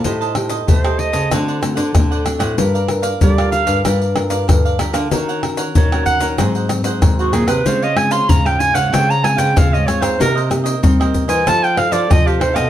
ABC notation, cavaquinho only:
X:1
M:4/4
L:1/16
Q:1/4=94
K:Gm
V:1 name="Cavaquinho"
[Gcea] [cea] z [cea] [Gcea] [cea]2 [cea] [Dcd^f] [cdf] z [cdf]2 [cdf] [Dcdf] [cdf] | [GBdf] [Bdf] z [Bdf] [GBdf] [Bdf]2 [Bdf] [GBdf] [Bd] z [Bdf]2 [Bdf] [GBdf] [Bdf] | [EB_d_g] [Bdg] z [Bdg] [EBdg] [Bdg]2 [Bdg] [_G_Acg] [Acg] z [Acg]2 [Acg] [GAcg] [Acg] | [Fc_df] [cdf] z [cdf] [Fcdf] [cdf]2 [cdf] [Fcdf] [cdf] z [cdf]2 [cdf] [Fcdf] [cdf] |
[EBce] [Bce] z [Bce] [EBce] [Bce]2 [Bce] [EAcf] [Acf] z [Acf]2 [Acf] [EAcf] [Acf] |]